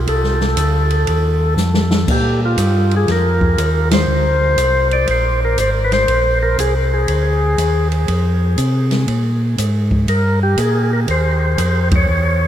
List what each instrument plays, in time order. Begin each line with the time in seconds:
0.07 tonewheel organ C2 A4, kick, ride
0.23 snare
0.41 snare
0.57 tonewheel organ D2, kick, hi-hat pedal, ride
0.90 ride
1.07 tonewheel organ D#2, kick, ride
1.57 tonewheel organ F2, snare, hi-hat pedal
1.74 snare
1.91 snare
2.08 tonewheel organ A#2 G4, kick, crash
2.45 tonewheel organ F4
2.58 tonewheel organ G2, kick, hi-hat pedal, ride
2.91 ride
2.97 tonewheel organ G#4
3.08 tonewheel organ F2 A#4, kick, snare, ride
3.41 kick
3.58 tonewheel organ D#2, kick, hi-hat pedal, ride
3.91 tonewheel organ C5, snare, ride
4.08 tonewheel organ D2
4.57 tonewheel organ C2, kick, hi-hat pedal, ride
4.91 tonewheel organ D5, ride
5.07 tonewheel organ A#1 C5, kick, ride
5.45 tonewheel organ A#4
5.58 tonewheel organ G#1 C5, kick, hi-hat pedal, ride
5.85 tonewheel organ B4
5.92 tonewheel organ C5, snare, ride
6.08 tonewheel organ A#1, kick, ride
6.43 tonewheel organ A#4
6.58 tonewheel organ C2 G#4, kick, hi-hat pedal, ride
6.93 tonewheel organ G#4
7.08 tonewheel organ D2, kick, ride
7.58 tonewheel organ D#2, kick, hi-hat pedal, ride
7.92 ride
8.08 tonewheel organ F2, kick, ride
8.58 tonewheel organ C3, kick, hi-hat pedal, ride
8.91 snare, ride
9.07 tonewheel organ A#2, kick, ride
9.58 tonewheel organ G#2, kick, hi-hat pedal, ride
9.91 kick
10.08 tonewheel organ G2 A#4, kick, ride
10.43 tonewheel organ G4
10.58 tonewheel organ A#2 G#4, kick, hi-hat pedal, ride
10.83 tonewheel organ G#4
10.93 tonewheel organ A#4
11.08 tonewheel organ D#2 C5, kick, ride
11.58 tonewheel organ F2, kick, hi-hat pedal, ride
11.91 kick, ride
11.96 tonewheel organ C#5
12.09 tonewheel organ E2